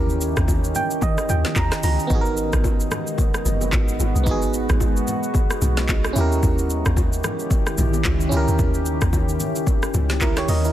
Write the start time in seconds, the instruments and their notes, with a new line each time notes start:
Already playing: log drum bass D#2, ambient pad D#3 C#4 G4 D#5, fm electric piano C#4 E4 G4 A#4
0.10 shaker
0.21 shaker
0.37 log drum bass D#2, kick, cross-stick, low bongo, shaker
0.48 kick, high bongo, shaker
0.64 shaker
0.75 fm electric piano G5, low conga, shaker
0.91 shaker
1.01 log drum bass D#3, fm electric piano D#5, kick, low bongo, shaker
1.18 cross-stick, shaker
1.29 log drum bass D#2, fm electric piano G5, high bongo, low conga, shaker
1.44 snare, low bongo, shaker
1.56 log drum bass D#2, fm electric piano A#5, kick, clap, high bongo, shaker
1.72 cross-stick, snare, shaker
1.83 log drum bass C#2, fm electric piano A#5, open hi-hat, high bongo, low bongo, shaker
1.99 shaker
2.07 log drum bass G#1, ambient pad G#3 B3 F#4, fm electric piano B3 D#4, kick, low conga, shaker
2.12 fm electric piano F#4 G#4
2.21 fm electric piano A#4
2.26 shaker
2.37 shaker
2.53 log drum bass G#1, kick, cross-stick, low bongo, shaker
2.64 kick, high bongo, shaker
2.80 shaker
2.91 cross-stick, low conga, shaker
3.07 shaker
3.18 kick, low bongo, shaker
3.34 cross-stick, shaker
3.45 log drum bass F#1, low conga, shaker
3.61 low bongo, shaker
3.72 log drum bass G#1, kick, clap, high bongo, shaker
3.88 shaker
4.00 log drum bass G#1, high bongo, low bongo, shaker
4.15 log drum bass B1, shaker
4.23 log drum bass G#1, fm electric piano B3 D#4, kick, low conga, shaker
4.29 fm electric piano F#4 G#4
4.42 shaker
4.54 shaker
4.69 log drum bass G#1, kick, cross-stick, low bongo, shaker
4.80 kick, high bongo, shaker
4.97 shaker
5.07 low conga, shaker
5.23 shaker
5.34 kick, low bongo, shaker
5.50 cross-stick, shaker
5.62 log drum bass B1, low conga, shaker
5.77 snare, low bongo, shaker
5.89 kick, clap, high bongo, shaker
6.05 cross-stick, shaker
6.13 log drum bass D#2, ambient pad D#3 C#4 E4 G4, fm electric piano C#4 E4, high bongo, low bongo, shaker
6.18 fm electric piano G4 A#4
6.32 shaker
6.43 log drum bass D#2, kick, low conga, shaker
6.58 shaker
6.70 shaker
6.86 log drum bass D#2, kick, cross-stick, low bongo, shaker
6.97 kick, high bongo, shaker
7.13 shaker
7.24 cross-stick, low conga, shaker
7.39 shaker
7.50 kick, low bongo, shaker
7.67 cross-stick, shaker
7.78 log drum bass A#1, low conga, shaker
7.94 low bongo, shaker
8.05 log drum bass C#2, kick, clap, high bongo, shaker
8.21 shaker
8.29 log drum bass C#2, fm electric piano C#4 E4, shaker
8.33 fm electric piano G4 A#4, high bongo, low bongo
8.48 log drum bass D#2, shaker
8.59 log drum bass D#2, kick, low conga, shaker
8.74 shaker
8.86 shaker
9.01 log drum bass D#2, kick, cross-stick, low bongo, shaker
9.13 kick, high bongo, shaker
9.29 shaker
9.40 low conga, shaker
9.56 shaker
9.67 kick, low bongo, shaker
9.83 cross-stick, shaker
9.94 log drum bass C#2, high bongo, low conga, shaker
10.10 snare, low bongo, shaker
10.21 fm electric piano E4 A#4, kick, clap, high bongo, shaker
10.37 fm electric piano G4 C#5, cross-stick, snare, shaker
10.48 log drum bass D#2, fm electric piano A#4 D#5, open hi-hat, high bongo, low bongo, shaker
10.64 fm electric piano E4 A#4, shaker